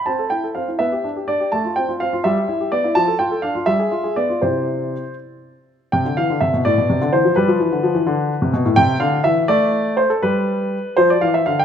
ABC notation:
X:1
M:6/8
L:1/16
Q:3/8=82
K:C
V:1 name="Grand piano"
a2 g2 f2 e4 d2 | a2 g2 f2 e4 d2 | a2 g2 f2 e4 d2 | c6 z6 |
g2 f2 e2 d4 c2 | B8- B2 z2 | g2 f2 e2 d4 c A | B6 c d f e f g |]
V:2 name="Grand piano"
C A E A C E B, G D G D G | A, F C F C F G, G E G B, E | F, A F A D F G, _A F A B, F | [C,EG]6 z6 |
C, D, E, D, C, B,, A,, B,, C, D, E, F, | G, F, E, D, F, E, D,3 C, B,, A,, | C,2 D,2 E,2 A,6 | G,6 F,2 E,2 D,2 |]